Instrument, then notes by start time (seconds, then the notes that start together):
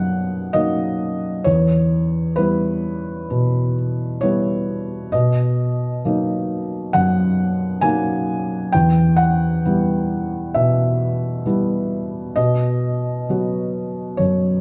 felt piano
Already playing: F#2 F#3 A#3 D#4 D#5 F#5
0.53 F#3 A#3 D#4 D#5
1.44 E2 C#5
2.36 G3 B3 E4 B4
3.31 B2
4.21 G3 B3 E4 C#5
5.12 B2 D#5
6.05 F#3 A#3 D#4
6.93 F#2 F#5
7.81 F#3 A#3 D#4 G#5
8.72 E2 G5
9.17 F#5
9.65 G3 B3 E4
10.54 B2 E5
11.46 G3 B3 E4
12.36 B2 D#5
13.29 F#3 B3 F#4
14.17 F#2 C#5